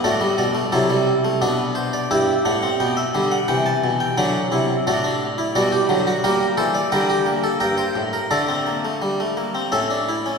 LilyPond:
<<
  \new Staff \with { instrumentName = "Harpsichord" } { \time 3/4 \key e \phrygian \tempo 4 = 87 << { d''8 d''8 a'4 b'8 c''16 d''16 | e''8 fis''8 g''16 e''8 fis''16 g''16 a''8 g''16 | fis''4 d''4 d''4 | \key g \dorian bes'8 c''16 d''16 g''4 g''4 |
d''2 e''4 | } \\ { fis'4 e'4 d'4 | g'2. | d'8 e'8 fis'16 d'8 e'16 fis'16 g'8 fis'16 | g'8 a'8 bes'16 g'8 a'16 bes'16 c''8 bes'16 |
a'2 a'4 | } >> }
  \new Staff \with { instrumentName = "Harpsichord" } { \clef bass \time 3/4 \key e \phrygian << { a16 g8 a16 fis16 g8 a16 b4 | e'8 d'16 c'16 b8 g8 e4 | fis4 a4 g8 fis8 | \key g \dorian bes4 g8 bes4. |
a16 c'16 bes16 a16 g16 a16 bes16 c'16 cis'16 d'16 e'16 cis'16 | } \\ { a,8 b,8 c4 b,4 | g,8 a,8 b,8 d8 c8 b,8 | d8 c8 a,4 b,8 d8 | g8 e8 d4 g,8 a,8 |
d2 a,4 | } >> }
>>